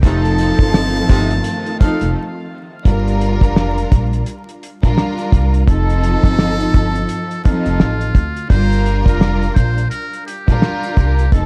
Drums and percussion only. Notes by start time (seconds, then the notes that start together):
0.03 kick, closed hi-hat, sleigh bells
0.25 closed hi-hat
0.38 closed hi-hat, sleigh bells
0.59 kick, closed hi-hat
0.74 cross-stick, snare, sleigh bells
0.96 closed hi-hat
1.09 kick, closed hi-hat, sleigh bells
1.31 closed hi-hat
1.44 closed hi-hat, sleigh bells
1.66 closed hi-hat
1.81 kick, closed hi-hat, sleigh bells
2.01 snare, closed hi-hat
2.85 kick, closed hi-hat
3.08 closed hi-hat
3.21 closed hi-hat
3.41 kick, closed hi-hat
3.56 cross-stick, snare
3.78 closed hi-hat
3.92 kick, closed hi-hat
4.13 closed hi-hat
4.26 closed hi-hat
4.49 closed hi-hat
4.63 closed hi-hat
4.83 kick, closed hi-hat
4.98 cross-stick, snare
5.19 closed hi-hat
5.32 kick, closed hi-hat
5.54 closed hi-hat
5.68 kick, closed hi-hat
5.90 closed hi-hat
6.03 closed hi-hat
6.24 kick, closed hi-hat
6.39 cross-stick, snare
6.60 closed hi-hat
6.74 kick, closed hi-hat
6.95 closed hi-hat
7.09 closed hi-hat
7.31 closed hi-hat
7.45 kick, closed hi-hat
7.66 snare, closed hi-hat
7.80 cross-stick, snare
8.01 closed hi-hat
8.15 kick, closed hi-hat
8.36 closed hi-hat
8.50 kick, closed hi-hat
8.72 closed hi-hat
8.86 closed hi-hat
9.06 kick, closed hi-hat
9.21 cross-stick, snare
9.43 closed hi-hat
9.56 kick, closed hi-hat
9.78 closed hi-hat
9.91 closed hi-hat
10.13 closed hi-hat
10.28 closed hi-hat
10.48 kick, closed hi-hat
10.62 cross-stick, snare
10.83 closed hi-hat
10.97 kick, closed hi-hat
11.19 closed hi-hat
11.32 kick, closed hi-hat